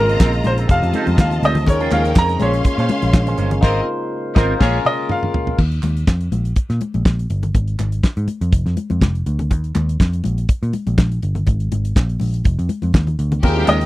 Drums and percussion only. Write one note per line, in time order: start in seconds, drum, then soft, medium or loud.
0.09 closed hi-hat medium
0.20 kick loud
0.20 snare medium
0.20 clap loud
0.20 muted conga soft
0.33 closed hi-hat soft
0.44 closed hi-hat medium
0.44 muted conga soft
0.44 high conga medium
0.58 closed hi-hat medium
0.69 kick loud
0.69 closed hi-hat medium
0.83 closed hi-hat soft
0.93 closed hi-hat medium
0.93 muted conga soft
0.93 high conga medium
1.07 closed hi-hat soft
1.07 high conga medium
1.18 kick loud
1.18 snare loud
1.18 clap loud
1.18 muted conga soft
1.18 high conga medium
1.31 closed hi-hat soft
1.31 low conga medium
1.43 closed hi-hat medium
1.43 high conga medium
1.55 closed hi-hat soft
1.55 low conga medium
1.66 kick medium
1.66 closed hi-hat medium
1.66 low conga medium
1.80 closed hi-hat soft
1.91 clap medium
1.91 closed hi-hat medium
1.91 muted conga soft
1.91 high conga medium
2.05 closed hi-hat medium
2.16 kick loud
2.16 snare medium
2.16 clap loud
2.16 muted conga soft
2.29 closed hi-hat medium
2.40 closed hi-hat medium
2.40 muted conga soft
2.40 high conga medium
2.54 closed hi-hat medium
2.64 kick loud
2.64 closed hi-hat medium
2.64 muted conga soft
2.78 snare soft
2.78 closed hi-hat soft
2.89 closed hi-hat medium
2.89 muted conga soft
2.89 high conga medium
3.02 closed hi-hat soft
3.02 high conga medium
3.13 kick loud
3.13 snare loud
3.13 clap medium
3.13 muted conga soft
3.13 high conga medium
3.27 closed hi-hat medium
3.27 low conga medium
3.38 closed hi-hat medium
3.38 muted conga soft
3.38 high conga medium
3.51 closed hi-hat soft
3.51 low conga medium
3.62 kick loud
3.62 snare medium
3.62 crash medium
4.36 kick loud
4.36 snare loud
4.60 kick loud
4.60 snare loud
4.60 crash medium
4.85 mid tom medium
5.09 mid tom medium
5.23 mid tom medium
5.34 floor tom loud
5.47 floor tom medium
5.58 kick medium
5.58 crash medium
5.58 low conga medium
5.71 closed hi-hat soft
5.83 clap medium
5.83 closed hi-hat medium
5.83 muted conga soft
5.83 high conga medium
5.97 closed hi-hat soft
6.07 kick loud
6.07 snare medium
6.07 clap medium
6.07 muted conga soft
6.21 closed hi-hat soft
6.32 closed hi-hat medium
6.32 muted conga soft
6.32 high conga medium
6.45 closed hi-hat soft
6.56 kick medium
6.56 closed hi-hat medium
6.56 muted conga soft
6.70 snare soft
6.70 closed hi-hat soft
6.81 closed hi-hat medium
6.81 high conga medium
6.94 closed hi-hat soft
6.94 high conga medium
7.05 kick loud
7.05 snare loud
7.05 clap medium
7.05 high conga medium
7.19 closed hi-hat soft
7.30 closed hi-hat medium
7.30 muted conga soft
7.43 closed hi-hat soft
7.43 low conga medium
7.54 kick medium
7.54 closed hi-hat medium
7.54 muted conga soft
7.54 low conga medium
7.68 closed hi-hat soft
7.79 clap medium
7.79 closed hi-hat medium
7.79 high conga medium
7.92 closed hi-hat soft
8.03 kick medium
8.03 snare medium
8.03 clap medium
8.17 closed hi-hat soft
8.28 closed hi-hat medium
8.28 muted conga soft
8.28 high conga medium
8.41 closed hi-hat soft
8.52 kick loud
8.52 closed hi-hat medium
8.66 snare soft
8.66 closed hi-hat soft
8.77 closed hi-hat medium
8.77 muted conga soft
8.77 high conga medium
8.90 closed hi-hat soft
8.90 high conga medium
9.01 kick medium
9.01 snare loud
9.01 clap medium
9.01 high conga medium
9.15 closed hi-hat soft
9.26 closed hi-hat medium
9.26 muted conga soft
9.39 closed hi-hat soft
9.39 low conga medium
9.51 kick medium
9.51 closed hi-hat medium
9.51 muted conga soft
9.51 low conga medium
9.64 closed hi-hat soft
9.75 clap medium
9.75 closed hi-hat medium
9.75 muted conga soft
9.75 high conga medium
9.89 closed hi-hat soft
10.00 kick loud
10.00 snare medium
10.00 clap medium
10.00 muted conga soft
10.13 closed hi-hat soft
10.24 closed hi-hat medium
10.24 muted conga soft
10.24 high conga medium
10.38 closed hi-hat soft
10.49 kick loud
10.49 closed hi-hat medium
10.63 closed hi-hat soft
10.73 closed hi-hat medium
10.73 muted conga soft
10.73 high conga medium
10.87 closed hi-hat soft
10.87 high conga medium
10.98 kick loud
10.98 snare loud
10.98 clap medium
10.98 muted conga soft
10.98 high conga medium
11.12 closed hi-hat soft
11.22 closed hi-hat medium
11.22 muted conga soft
11.35 closed hi-hat soft
11.35 low conga medium
11.47 kick medium
11.47 closed hi-hat medium
11.47 muted conga soft
11.47 low conga medium
11.60 closed hi-hat soft
11.72 closed hi-hat medium
11.72 muted conga soft
11.72 high conga medium
11.85 closed hi-hat medium
11.96 kick loud
11.96 snare medium
11.96 clap medium
11.96 muted conga soft
12.09 closed hi-hat soft
12.20 open hi-hat medium
12.20 muted conga soft
12.20 high conga medium
12.34 closed hi-hat medium
12.44 kick loud
12.44 closed hi-hat medium
12.44 muted conga soft
12.59 closed hi-hat soft
12.69 closed hi-hat medium
12.69 muted conga soft
12.69 high conga medium
12.82 closed hi-hat soft
12.82 high conga medium
12.94 kick loud
12.94 snare loud
12.94 clap medium
12.94 muted conga soft
12.94 high conga medium
13.07 closed hi-hat soft
13.07 low conga medium
13.19 closed hi-hat medium
13.32 closed hi-hat soft
13.32 low conga medium
13.43 kick medium
13.43 crash medium
13.43 muted conga soft
13.43 low conga medium
13.68 clap medium
13.68 closed hi-hat medium
13.68 muted conga soft
13.68 high conga medium
13.81 closed hi-hat medium